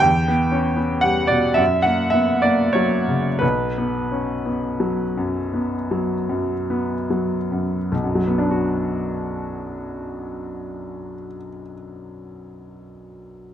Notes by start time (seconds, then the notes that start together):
0.00 E2 G5
0.28 B3
0.52 C#4
0.76 B3
1.01 G3 F#5
1.27 B2 D5
1.54 F#2 E5
1.82 A#3 F#5
2.10 B3 E5
2.42 A#3 D5
2.73 F#3 C#5
3.08 C#3
3.39 B1 B4
3.78 B3
4.12 C#4
4.46 B3
4.80 F#3
5.18 F#2
5.54 B3
5.91 F#3
6.29 F#2
6.70 B3
7.10 F#3
7.52 F#2
7.92 B1
8.04 F#2
8.15 F#3
8.27 B3
8.38 D4
8.51 F#4